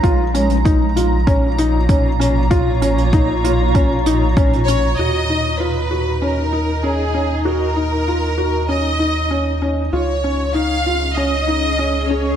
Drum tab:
CC |----------------|----------------|x---------------|----------------|
HH |x-xxx-x-x-x-x-x-|x-xxx-x-x-x-xxx-|----------------|----------------|
BD |o---o---o---o---|o---o---o---o---|----------------|----------------|

CC |----------------|
HH |----------------|
BD |----------------|